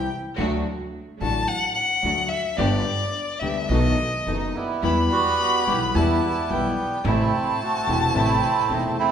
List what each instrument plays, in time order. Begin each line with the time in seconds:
Already playing: violin G5
0.38 upright bass D2, grand piano D2 D3 F#3 A3 F#4, string section A3 D4 F#4
1.20 upright bass A1, grand piano A1 A2 D3 F#3 A3 F#4, string section A3 D4 F#4, violin A5
1.48 violin F#5
1.74 violin F#5
2.03 upright bass D2, grand piano D2 D3 F#3 A3 F#4, string section A3 D4 F#4
2.28 violin E5
2.57 upright bass G1, grand piano G1 G2 D3 G3 B3 G4, string section B3 D4 G4, violin D5
3.39 upright bass D2, grand piano D2 D3 G3 B3 G4, string section B3 D4 G4, violin E5
3.68 upright bass B1, grand piano B1 B2 D#3 A3 B3 F#4, string section B3 D#4 A4, violin D#5
4.26 upright bass F#1, grand piano F#1 F#2 D#3 A3 B3 F#4, string section B3 D#4 A4, bandoneon D#4
4.55 bandoneon G3 B3 E4
4.83 upright bass E2, grand piano E2 E3 G3 B3 G4, string section G3 B3 E4, violin B5
5.12 bandoneon B3 F#4
5.66 upright bass B1, grand piano B1 B2 E3 G3 B3 G4, string section G3 B3 E4, bandoneon G4
5.95 upright bass E2, grand piano E2 E3 G3 B3 G4, string section G3 B3 E4, bandoneon G3 B3 E4, violin A5
6.49 grand piano B1 B2 E3 G3 B3 G4, upright bass B1, string section G3 B3 E4, violin G5
7.04 upright bass A1, grand piano A1 A2 C3 E3 A3 E4, string section A3 C4 E4, bandoneon A3 C4, violin A5
7.08 bandoneon E4
7.62 bandoneon A3 C4 F#4
7.87 upright bass E1, grand piano E1 E2 C3 E3 A3 E4, string section A3 C4 E4
8.15 upright bass A1, grand piano A1 A2 C3 E3 A3 E4, string section A3 C4 E4, bandoneon A3 C4 E4
8.69 upright bass E1, grand piano E1 E2 C3 E3 A3 E4, string section A3 C4 E4, bandoneon D#4
8.98 bandoneon A3 C4 E4